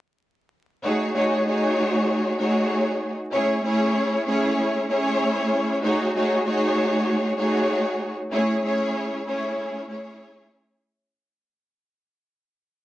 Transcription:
0.83 A3 D#4 F#4 G#4 C#5
1.14 A3 D#4 F#4 G#4 C#5
1.45 A3 D#4 F#4 G#4 C#5
2.38 A3 D#4 F#4 G#4 C#5
3.32 A3 C#4 E4 G#4 C#5
3.63 A3 C#4 E4 G#4 C#5
4.26 A3 C#4 E4 G#4 C#5
4.89 A3 C#4 E4 G#4 C#5
5.83 A3 D#4 F#4 G#4 C#5
6.14 A3 D#4 F#4 G#4 C#5
6.46 A3 D#4 F#4 G#4 C#5
7.37 A3 D#4 F#4 G#4 C#5
8.32 A3 C#4 E4 G#4 C#5
8.63 A3 C#4 E4 G#4 C#5
9.26 A3 C#4 E4 G#4 C#5
9.88 A3 C#4 E4 G#4 C#5

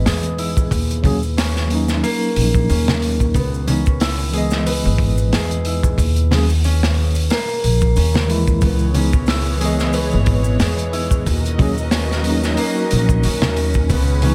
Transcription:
Already playing: E3 G#3 B3 C#4 E4 B4 D#5
0.05 E2 G#4, snare, open hi-hat, maracas
0.23 closed hi-hat, maracas
0.38 E4, open hi-hat
0.57 kick, maracas
0.71 D#2, kick, open hi-hat, maracas
0.91 closed hi-hat, maracas
1.02 F#3 A#3 C#4 G#4, kick, open hi-hat, low conga
1.23 maracas
1.37 C#4, snare, open hi-hat, maracas
1.56 snare, maracas
1.67 F#3 A#3, open hi-hat
1.72 C#4 D#4
1.88 snare, maracas
2.03 A#3, open hi-hat, maracas
2.23 maracas
2.36 A#1, open hi-hat
2.55 kick, maracas
2.69 D#2 C#4, open hi-hat, maracas
2.88 snare, low conga, maracas
3.02 open hi-hat
3.20 kick, maracas
3.34 C#2 B3, kick, open hi-hat, maracas
3.54 maracas
3.66 E3 G#3 B3 C#4 D#4, open hi-hat, low conga
3.86 kick, maracas
4.00 E4, snare, open hi-hat, maracas
4.20 maracas
4.30 E3 G#3 G#4, open hi-hat
4.35 B3 D#5
4.51 snare, maracas
4.66 B4, open hi-hat, maracas
4.83 G#1, maracas
4.98 kick, open hi-hat
5.18 maracas
5.33 E2 G#4, snare, open hi-hat, maracas
5.51 closed hi-hat, maracas
5.65 E4, open hi-hat
5.83 kick, maracas
5.98 D#2, kick, open hi-hat, maracas
6.16 closed hi-hat, maracas
6.30 F#3 A#3 C#4, snare, open hi-hat, low conga
6.35 G#4
6.49 maracas
6.64 C#4, open hi-hat, maracas
6.83 snare, open hi-hat, maracas
7.15 open hi-hat, maracas
7.30 A#3, snare, open hi-hat, maracas
7.48 maracas
7.64 A#1, open hi-hat
7.81 kick, maracas
7.96 D#2 C#4, open hi-hat, maracas
8.14 snare, low conga, maracas
8.27 E3 G#3 E4, open hi-hat
8.47 kick, maracas
8.61 C#2 E3 B3 G#4 C#5, kick, open hi-hat, maracas
8.79 maracas
8.93 E3 G#3 B3 C#4 D#4, open hi-hat, low conga
9.13 kick, maracas
9.26 E4, snare, open hi-hat, maracas
9.45 maracas
9.57 E3 G#3 G#4, open hi-hat
9.63 B3 D#5
9.79 snare, maracas
9.93 B4, open hi-hat, maracas
10.11 G#1, maracas
10.26 kick, open hi-hat
10.44 maracas
10.60 E2 G#4, snare, open hi-hat, maracas
10.78 closed hi-hat, maracas
10.93 E4, open hi-hat
11.11 kick, maracas
11.26 D#2 C#4 F#4 A#4 D#5, kick, open hi-hat, maracas
11.45 closed hi-hat, maracas
11.58 F#3 A#3 C#4, kick, open hi-hat, low conga
11.62 G#4
11.78 maracas
11.91 C#4, snare, open hi-hat, maracas
12.11 snare, maracas
12.22 F#3 A#3, open hi-hat
12.27 C#4 D#4
12.43 snare, maracas
12.57 A#3, open hi-hat, maracas
12.77 maracas
12.91 A#1, open hi-hat
13.09 kick, maracas
13.23 D#2 C#4, open hi-hat, maracas
13.42 snare, low conga, maracas
13.56 open hi-hat
13.74 kick, maracas
13.90 C#2 B3 G#4 B4, kick, open hi-hat, maracas
14.07 maracas
14.22 E3 G#3 B3 C#4, open hi-hat, low conga
14.26 D#4

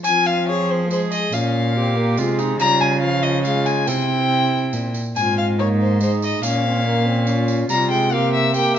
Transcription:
0.04 F3 C4 F4 G#5, tambourine
0.26 F5
0.49 G#4 C#5
0.71 C5
0.90 G#3 G#4 C5, tambourine
1.12 D#5, tambourine
1.32 A#2 C#4 F4 F5, tambourine
1.76 C4 G4
1.97 A#3
2.17 C3 G#3 F4, tambourine
2.39 D#4, tambourine
2.59 C#3 G3 F4 A#5, tambourine
2.81 G#5
3.02 F3 F5
3.23 D#5
3.44 G#3 F4 F5, tambourine
3.66 G#5, tambourine
3.87 C3 C4 E4 G5, tambourine
4.73 A#2, tambourine
4.94 tambourine
5.16 G#2 C4 F4 G#5, tambourine
5.38 F5
5.59 A#3 D#4 C#5
5.81 C5
6.01 G#3 D#4 C5, tambourine
6.22 D#5, tambourine
6.43 A#2 C#4 F5, tambourine
6.64 C4
6.85 A#3
7.06 C4
7.27 C#4 F4, tambourine
7.48 tambourine
7.69 C3 G3 F4 A#5, tambourine
7.91 G#3 G5
8.12 A#3 G4 F5
8.34 E5
8.54 A#3 G4 G5, tambourine

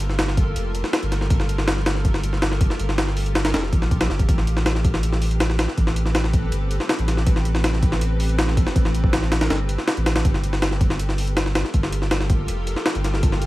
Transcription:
Already playing: G1 F4 G4 A4 A#4
0.00 closed hi-hat
0.10 snare
0.19 snare, closed hi-hat
0.28 snare
0.37 kick, closed hi-hat
0.56 F1, closed hi-hat
0.75 closed hi-hat
0.84 snare
0.93 snare, closed hi-hat
1.03 G1, closed hi-hat
1.12 snare, closed hi-hat
1.21 snare
1.30 G1, kick, closed hi-hat
1.40 snare
1.49 closed hi-hat
1.58 snare
1.68 snare, closed hi-hat
1.77 snare
1.86 snare, closed hi-hat
1.95 snare
2.05 kick, closed hi-hat
2.14 snare
2.23 closed hi-hat
2.33 snare
2.42 snare, closed hi-hat
2.51 snare
2.61 kick, closed hi-hat
2.70 snare
2.79 G1, closed hi-hat
2.89 snare
2.98 snare, closed hi-hat
3.07 snare
3.17 open hi-hat
3.26 closed hi-hat
3.35 snare, closed hi-hat
3.45 snare, closed hi-hat
3.54 F1, snare, closed hi-hat
3.63 snare
3.73 A#1, kick, closed hi-hat
3.82 snare
3.91 kick, closed hi-hat
4.01 snare, closed hi-hat
4.10 G1, snare
4.19 kick, closed hi-hat
4.28 A1 C4 A4 B4, kick, closed hi-hat
4.38 snare
4.47 closed hi-hat
4.57 snare
4.66 snare, closed hi-hat
4.75 snare
4.84 kick, closed hi-hat
4.94 snare
5.03 closed hi-hat
5.13 snare
5.22 open hi-hat
5.31 closed hi-hat
5.40 snare, closed hi-hat
5.50 snare
5.59 snare, closed hi-hat
5.68 snare
5.78 A1, kick, closed hi-hat
5.87 snare
5.96 closed hi-hat
6.05 snare
6.15 snare, closed hi-hat
6.24 snare
6.33 kick, closed hi-hat
6.52 G1, closed hi-hat
6.71 closed hi-hat
6.80 snare
6.89 snare, closed hi-hat
6.99 A1, closed hi-hat
7.08 snare, closed hi-hat
7.17 snare
7.27 A1, kick, closed hi-hat
7.36 snare
7.45 closed hi-hat
7.55 snare
7.64 snare, closed hi-hat
7.73 snare
7.83 kick, closed hi-hat
7.92 snare
8.01 closed hi-hat
8.20 open hi-hat
8.29 closed hi-hat
8.39 snare, closed hi-hat
8.48 snare
8.57 kick, closed hi-hat
8.67 snare
8.76 A1, kick, closed hi-hat
8.85 snare
8.95 closed hi-hat
9.04 kick
9.13 snare, closed hi-hat
9.22 snare
9.32 snare, closed hi-hat
9.41 snare, closed hi-hat
9.50 G1, snare, closed hi-hat
9.69 closed hi-hat
9.78 snare
9.87 snare, closed hi-hat
9.97 A1, closed hi-hat
10.06 snare, closed hi-hat
10.16 snare, closed hi-hat
10.25 G1 F4 G4 A4 A#4, kick, closed hi-hat
10.34 snare
10.44 closed hi-hat
10.53 snare
10.62 snare, closed hi-hat
10.72 snare
10.81 kick, closed hi-hat
10.90 snare
10.99 closed hi-hat
11.09 snare
11.18 open hi-hat
11.27 closed hi-hat
11.37 snare, closed hi-hat
11.46 snare
11.55 snare, closed hi-hat
11.65 snare
11.74 G1, kick, closed hi-hat
11.83 snare
11.92 closed hi-hat
12.02 snare
12.11 snare, closed hi-hat
12.21 snare
12.30 kick, closed hi-hat
12.48 F1, closed hi-hat
12.67 closed hi-hat
12.76 snare
12.86 snare, closed hi-hat
12.95 G1, closed hi-hat
13.04 snare, closed hi-hat
13.14 snare
13.23 G1, kick, closed hi-hat
13.32 snare
13.42 closed hi-hat

